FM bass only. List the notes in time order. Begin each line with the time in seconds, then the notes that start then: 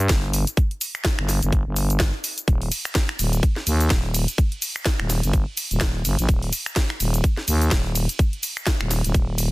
0.10 G1
1.19 G1
1.42 G1
1.66 G1
2.48 D#1
3.19 D#1
3.67 D#2
3.91 D#1
5.00 D#1
5.23 G1
5.71 D#1
6.05 G1
6.19 A#1
6.29 D#1
7.00 D#1
7.48 D#2
7.72 D#1
8.81 D#1
9.04 D#1
9.14 D#1